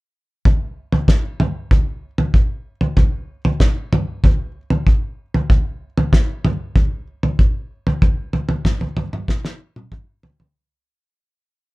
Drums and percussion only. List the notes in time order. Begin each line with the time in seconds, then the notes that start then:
0.45 kick, floor tom
0.92 floor tom
1.08 kick, snare
1.40 floor tom, mid tom
1.71 kick, floor tom
2.18 floor tom
2.34 kick
2.81 floor tom
2.97 kick, floor tom
3.45 floor tom
3.60 kick, snare
3.93 floor tom, mid tom
4.24 kick, floor tom
4.70 floor tom
4.87 kick
5.34 floor tom
5.50 kick, floor tom
5.98 floor tom
6.13 kick, snare
6.45 floor tom, mid tom
6.76 kick, floor tom
7.23 floor tom
7.39 kick
7.87 floor tom
8.02 kick, floor tom
8.33 floor tom
8.49 floor tom
8.65 kick, snare, mid tom
8.81 floor tom
8.97 floor tom, mid tom
9.13 mid tom
9.28 kick, snare
9.45 snare
9.76 high tom
9.92 kick, mid tom
10.23 floor tom
10.40 floor tom